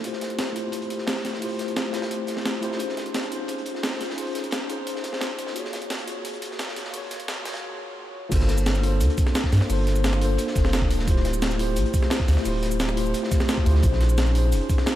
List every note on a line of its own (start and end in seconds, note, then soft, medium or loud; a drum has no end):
0.01 0.74 D1 medium
0.01 0.51 A3 medium
0.01 0.53 E4 medium
0.01 0.54 F4 medium
0.01 closed hi-hat medium
0.06 0.55 G4 medium
0.06 0.55 C5 medium
0.13 snare soft
0.21 snare medium
0.21 closed hi-hat medium
0.30 closed hi-hat soft
0.39 snare loud
0.39 closed hi-hat loud
0.39 closed hi-hat medium
0.47 closed hi-hat soft
0.53 1.38 A3 medium
0.53 1.39 E4 medium
0.53 1.40 F4 medium
0.53 closed hi-hat medium
0.57 1.41 G4 medium
0.57 1.42 C5 medium
0.72 0.81 A1 loud
0.72 closed hi-hat medium
0.82 closed hi-hat soft
0.90 closed hi-hat medium
0.98 snare soft
1.07 snare loud
1.07 closed hi-hat medium
1.16 snare medium
1.25 1.33 D2 medium
1.25 snare soft
1.25 closed hi-hat medium
1.33 snare soft
1.39 2.10 D1 medium
1.39 1.89 A3 medium
1.39 1.91 E4 medium
1.39 1.92 F4 medium
1.39 closed hi-hat medium
1.39 open hi-hat medium
1.44 1.93 G4 medium
1.44 1.93 C5 medium
1.59 snare soft
1.59 closed hi-hat medium
1.68 closed hi-hat soft
1.76 snare loud
1.76 closed hi-hat loud
1.76 closed hi-hat medium
1.91 2.59 A3 medium
1.91 2.60 E4 medium
1.91 2.61 F4 medium
1.91 snare loud
1.91 closed hi-hat medium
1.95 2.62 G4 medium
1.95 2.63 C5 medium
2.02 snare loud
2.02 closed hi-hat medium
2.11 closed hi-hat medium
2.27 snare soft
2.27 closed hi-hat medium
2.36 snare soft
2.46 snare loud
2.46 closed hi-hat medium
2.61 2.78 D2 loud
2.61 2.77 A3 medium
2.61 2.77 E4 medium
2.61 2.78 F4 medium
2.61 2.78 G4 medium
2.61 2.79 C5 loud
2.61 closed hi-hat medium
2.72 snare medium
2.77 3.50 A#1 medium
2.77 3.27 C#4 medium
2.77 3.29 D#4 medium
2.77 3.30 F4 medium
2.77 closed hi-hat medium
2.82 3.30 G#4 medium
2.82 3.31 C5 medium
2.89 snare soft
2.97 snare medium
2.97 closed hi-hat medium
3.06 closed hi-hat soft
3.14 snare loud
3.14 closed hi-hat medium
3.14 closed hi-hat loud
3.23 closed hi-hat soft
3.28 4.13 C#4 medium
3.28 4.15 D#4 medium
3.28 4.16 F4 medium
3.28 closed hi-hat medium
3.33 4.17 G#4 medium
3.33 4.17 C5 medium
3.48 3.57 F1 loud
3.48 closed hi-hat medium
3.58 closed hi-hat soft
3.66 closed hi-hat medium
3.75 snare soft
3.83 snare loud
3.83 closed hi-hat medium
3.92 snare medium
4.01 snare soft
4.01 closed hi-hat medium
4.10 snare medium
4.15 4.85 A#1 medium
4.15 4.65 C#4 medium
4.15 4.67 D#4 medium
4.15 4.68 F4 medium
4.15 closed hi-hat medium
4.15 open hi-hat medium
4.20 4.68 G#4 medium
4.20 4.69 C5 medium
4.35 snare soft
4.35 closed hi-hat medium
4.44 closed hi-hat soft
4.51 snare loud
4.51 closed hi-hat medium
4.66 5.52 C#4 medium
4.66 5.53 D#4 medium
4.66 5.53 F4 medium
4.66 closed hi-hat medium
4.71 5.55 G#4 medium
4.71 5.55 C5 medium
4.87 closed hi-hat medium
4.96 snare soft
5.03 5.40 G#1 medium
5.03 snare soft
5.03 closed hi-hat medium
5.13 snare soft
5.21 snare loud
5.21 closed hi-hat medium
5.38 5.54 F1 medium
5.38 closed hi-hat medium
5.47 snare medium
5.53 6.03 A#3 medium
5.53 6.05 F4 medium
5.53 6.06 F#4 medium
5.53 closed hi-hat loud
5.53 closed hi-hat medium
5.57 6.06 G#4 medium
5.57 6.07 C#5 medium
5.65 snare soft
5.73 snare medium
5.73 closed hi-hat medium
5.82 closed hi-hat soft
5.90 snare loud
5.90 closed hi-hat medium
5.99 closed hi-hat soft
6.04 6.89 A#3 medium
6.04 6.91 F4 medium
6.04 6.92 F#4 medium
6.04 closed hi-hat medium
6.09 6.93 G#4 medium
6.09 6.93 C#5 medium
6.25 closed hi-hat medium
6.33 closed hi-hat soft
6.42 closed hi-hat medium
6.51 snare soft
6.59 snare loud
6.59 closed hi-hat medium
6.68 snare medium
6.76 snare soft
6.76 closed hi-hat medium
6.85 snare medium
6.91 7.41 A#3 medium
6.91 7.43 F4 medium
6.91 7.43 F#4 medium
6.91 closed hi-hat loud
6.91 open hi-hat medium
6.95 7.44 G#4 medium
6.95 7.45 C#5 medium
7.11 snare soft
7.11 closed hi-hat medium
7.20 closed hi-hat soft
7.28 snare loud
7.28 closed hi-hat loud
7.28 closed hi-hat medium
7.42 8.27 A#3 medium
7.42 8.29 F4 medium
7.42 8.30 F#4 medium
7.42 snare loud
7.42 closed hi-hat medium
7.47 8.31 G#4 medium
7.47 8.31 C#5 medium
7.53 snare loud
7.53 closed hi-hat medium
8.29 9.02 G1 loud
8.29 8.79 A#3 medium
8.29 8.81 D4 medium
8.29 8.81 F4 medium
8.29 kick loud
8.29 closed hi-hat loud
8.29 closed hi-hat medium
8.29 crash loud
8.29 shaker soft
8.33 8.82 A4 medium
8.33 8.83 C5 medium
8.40 snare soft
8.48 snare medium
8.48 closed hi-hat medium
8.58 closed hi-hat soft
8.58 shaker medium
8.66 snare loud
8.66 closed hi-hat medium
8.66 shaker soft
8.74 closed hi-hat soft
8.74 shaker soft
8.80 9.65 A#3 medium
8.80 9.67 D4 medium
8.80 9.68 F4 medium
8.80 closed hi-hat medium
8.80 open hi-hat medium
8.85 9.68 A4 medium
8.85 9.69 C5 medium
9.00 9.08 D2 loud
9.00 closed hi-hat medium
9.00 shaker soft
9.10 closed hi-hat soft
9.18 kick loud
9.18 closed hi-hat medium
9.18 shaker medium
9.26 snare soft
9.35 snare loud
9.35 closed hi-hat loud
9.35 closed hi-hat medium
9.35 shaker medium
9.44 kick medium
9.44 snare medium
9.52 9.60 G2 loud
9.52 snare soft
9.52 closed hi-hat medium
9.52 open hi-hat medium
9.52 shaker soft
9.61 snare medium
9.61 snare soft
9.66 10.37 G1 medium
9.66 10.17 A#3 medium
9.66 10.19 D4 medium
9.66 10.19 F4 medium
9.66 closed hi-hat medium
9.66 shaker soft
9.70 10.20 A4 medium
9.70 10.21 C5 medium
9.70 open hi-hat medium
9.87 snare soft
9.87 closed hi-hat medium
9.96 closed hi-hat soft
9.96 shaker medium
10.04 snare loud
10.04 closed hi-hat medium
10.04 shaker soft
10.13 snare medium
10.13 shaker soft
10.18 11.04 A#3 medium
10.18 11.05 D4 medium
10.18 11.05 F4 medium
10.18 closed hi-hat medium
10.18 open hi-hat medium
10.23 11.06 A4 medium
10.23 11.07 C5 medium
10.38 closed hi-hat medium
10.38 shaker soft
10.47 snare soft
10.55 10.92 F1 medium
10.55 kick loud
10.55 snare soft
10.55 closed hi-hat medium
10.55 shaker medium
10.65 snare soft
10.73 snare loud
10.73 closed hi-hat loud
10.73 closed hi-hat medium
10.73 shaker soft
10.82 kick medium
10.90 11.06 D1 medium
10.90 closed hi-hat medium
10.90 open hi-hat medium
10.90 shaker soft
10.99 snare medium
11.04 11.78 D1 medium
11.04 11.55 A3 medium
11.04 11.56 E4 medium
11.04 11.57 F4 medium
11.04 kick loud
11.04 closed hi-hat medium
11.04 shaker soft
11.09 11.58 G4 medium
11.09 11.59 C5 medium
11.16 snare soft
11.25 snare medium
11.25 closed hi-hat medium
11.34 closed hi-hat soft
11.34 shaker medium
11.42 snare loud
11.42 closed hi-hat medium
11.42 shaker soft
11.50 closed hi-hat soft
11.50 shaker soft
11.56 12.41 A3 medium
11.56 12.43 E4 medium
11.56 12.44 F4 medium
11.56 closed hi-hat medium
11.56 open hi-hat medium
11.61 12.44 G4 medium
11.61 12.45 C5 medium
11.76 11.84 A1 loud
11.76 closed hi-hat medium
11.76 shaker soft
11.86 closed hi-hat soft
11.94 kick loud
11.94 closed hi-hat medium
11.94 shaker medium
12.02 snare soft
12.10 snare loud
12.10 closed hi-hat medium
12.10 shaker soft
12.20 kick medium
12.20 snare medium
12.28 12.36 D2 medium
12.28 snare soft
12.28 closed hi-hat medium
12.28 open hi-hat medium
12.28 shaker soft
12.37 snare medium
12.37 snare soft
12.42 13.13 D1 medium
12.42 12.93 A3 medium
12.42 12.94 E4 medium
12.42 12.95 F4 medium
12.42 closed hi-hat medium
12.42 shaker soft
12.46 12.96 G4 medium
12.46 12.97 C5 medium
12.46 open hi-hat medium
12.63 snare soft
12.63 closed hi-hat medium
12.71 closed hi-hat soft
12.71 shaker medium
12.80 snare loud
12.80 closed hi-hat medium
12.80 closed hi-hat loud
12.80 shaker soft
12.89 snare medium
12.89 shaker soft
12.94 13.63 A3 medium
12.94 13.64 E4 medium
12.94 13.64 F4 medium
12.94 closed hi-hat medium
12.94 open hi-hat medium
12.99 13.65 G4 medium
12.99 13.66 C5 medium
13.06 shaker soft
13.14 closed hi-hat loud
13.14 closed hi-hat medium
13.14 shaker soft
13.23 snare soft
13.31 kick loud
13.31 snare soft
13.31 closed hi-hat medium
13.31 shaker medium
13.40 snare medium
13.40 snare soft
13.40 shaker soft
13.49 snare loud
13.49 closed hi-hat medium
13.49 shaker soft
13.58 kick medium
13.65 13.82 D2 loud
13.65 13.81 A3 loud
13.65 13.81 E4 medium
13.65 13.81 F4 medium
13.65 13.82 G4 medium
13.65 13.82 C5 loud
13.65 closed hi-hat medium
13.65 open hi-hat medium
13.65 shaker soft
13.75 snare medium
13.80 14.54 A#1 loud
13.80 14.31 C#4 medium
13.80 14.32 D#4 medium
13.80 14.33 F4 medium
13.80 kick loud
13.80 closed hi-hat medium
13.80 shaker medium
13.85 14.34 G#4 medium
13.85 14.35 C5 medium
13.92 snare soft
14.01 snare medium
14.01 closed hi-hat medium
14.09 closed hi-hat soft
14.09 shaker medium
14.18 snare loud
14.18 closed hi-hat medium
14.18 shaker soft
14.26 closed hi-hat soft
14.26 shaker soft
14.32 14.95 C#4 medium
14.32 14.95 D#4 medium
14.32 14.95 F4 medium
14.32 closed hi-hat medium
14.32 open hi-hat medium
14.37 14.95 G#4 medium
14.37 14.95 C5 medium
14.52 14.60 F1 loud
14.52 closed hi-hat medium
14.52 closed hi-hat loud
14.52 shaker soft
14.61 closed hi-hat soft
14.70 kick loud
14.70 closed hi-hat medium
14.70 shaker medium
14.78 snare soft
14.86 snare loud
14.86 closed hi-hat medium
14.86 shaker soft